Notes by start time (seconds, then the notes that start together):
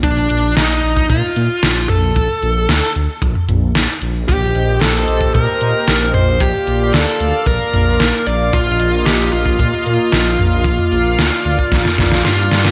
0.03 A#1 D4, kick, closed hi-hat
0.30 A#1, closed hi-hat
0.57 A#1 D#4, snare, closed hi-hat
0.83 A#1, closed hi-hat
0.97 kick
1.10 A#2 F4, kick, closed hi-hat
1.36 A#2, closed hi-hat
1.63 A#1, snare, closed hi-hat
1.89 A#1 A4, closed hi-hat, mid tom
2.16 A#1, kick, closed hi-hat
2.42 A#1, closed hi-hat
2.69 D2, snare, closed hi-hat
2.96 D2, closed hi-hat
3.22 A#1, kick, closed hi-hat
3.35 mid tom
3.49 A#1, closed hi-hat, mid tom
3.75 A#1, snare, closed hi-hat
4.02 A#1, closed hi-hat
4.28 A#1 A#3 G4 C5 D#5, kick, closed hi-hat
4.55 A#1, closed hi-hat
4.81 A#1 A4, snare, closed hi-hat
5.08 A#1, closed hi-hat
5.21 kick
5.34 A#2 A#4, kick, closed hi-hat
5.61 A#2, closed hi-hat
5.88 A#1, snare, closed hi-hat
6.14 A#1 C5, closed hi-hat, mid tom
6.40 A#1 F4 G4 D5 F5, kick, closed hi-hat
6.67 A#1, closed hi-hat
6.94 D2 A4, snare, closed hi-hat
7.20 D2, closed hi-hat
7.46 A#1 A#4, kick, closed hi-hat
7.74 A#1, closed hi-hat, mid tom
8.00 A#1, snare, closed hi-hat
8.27 A#1 D5, closed hi-hat
8.53 A#1 F4 D#5 F5, kick, closed hi-hat
8.80 A#1, closed hi-hat
9.06 A#1 G4, snare, closed hi-hat
9.33 A#1 F4, closed hi-hat
9.46 kick
9.59 A#2, kick, closed hi-hat
9.86 A#2, closed hi-hat
10.12 A#1, snare, closed hi-hat
10.39 A#1, closed hi-hat, mid tom
10.64 A#1 D5, kick, closed hi-hat
10.79 mid tom
10.92 A#1, closed hi-hat
11.19 D2, snare, closed hi-hat
11.45 D2, closed hi-hat
11.59 kick
11.72 A#1, kick, snare, closed hi-hat
11.85 snare, mid tom
11.98 A#1, kick, snare, closed hi-hat, mid tom
12.12 snare
12.25 G2 F4, snare, closed hi-hat
12.51 G2, snare, closed hi-hat
12.65 snare